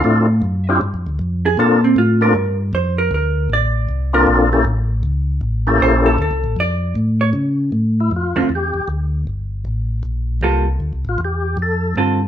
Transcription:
X:1
M:4/4
L:1/8
Q:"Swing" 1/4=156
K:Dm
V:1 name="Hollow-body jazz guitar"
f4 z3 ^G | A C F B2 z c B | B2 d3 B z2 | z6 c A |
A2 d2 z ^c z2 | z3 [D,A,CF] z4 | z6 [G,B,FA] z | z6 [D,CFA] z |]
V:2 name="Tonewheel organ"
[CDEFA] z2 [CDEFG] z4 | [B,CDFA] z2 [B,CDFA] z4 | z4 z [B,CDFA]2 [B,^CEGA] | z4 z [B,^CEGA]3 |
z8 | z E F2 G2 z2 | z8 | z F G2 A2 z2 |]
V:3 name="Tonewheel organ" clef=bass
A,,2 ^F,,2 (3G,, =F,, D,, F,,2 | B,,2 A,,2 G,,2 F,,2 | D,,2 A,,,2 C,,2 B,,,2 | A,,,2 ^C,,2 A,,,2 B,,,2 |
(3D,, C,, A,,, F,,2 A,,2 ^C,2 | A,,2 F,, F,, E,, E,, D,,2 | G,,,2 A,,,2 B,,,2 C,,2 | (3D,, C,, A,,, E,,2 F,,2 G,,2 |]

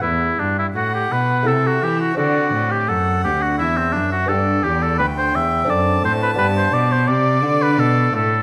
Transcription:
X:1
M:3/4
L:1/16
Q:1/4=85
K:G
V:1 name="Violin"
z4 f4 e4 | d4 f4 e4 | d4 g4 a4- | a4 d8 |]
V:2 name="Oboe"
E2 D E F G B2 A F G F | F3 G A2 G F E C D F | A2 G A B c e2 d2 c B | B c d c d3 B A2 A2 |]
V:3 name="Lute"
[EB]8 [A,EA]4 | [CDA]12 | [B,DG]8 [CDA]4 | [B,DG]12 |]
V:4 name="Lute" clef=bass
E,,2 G,,2 A,,2 B,,2 C,2 E,2 | D,2 A,,2 F,,2 D,,2 E,,2 F,,2 | G,,2 E,,2 D,,2 E,,2 F,,2 A,,2 | G,,2 B,,2 C,2 D,2 B,,2 A,,2 |]
V:5 name="Cello" clef=bass
E,,2 G,,2 A,,2 B,,2 C,2 E,2 | D,2 A,,2 F,,2 D,,2 E,,2 F,,2 | G,,2 E,,2 D,,2 E,,2 F,,2 A,,2 | G,,2 B,,2 C,2 D,2 B,,2 A,,2 |]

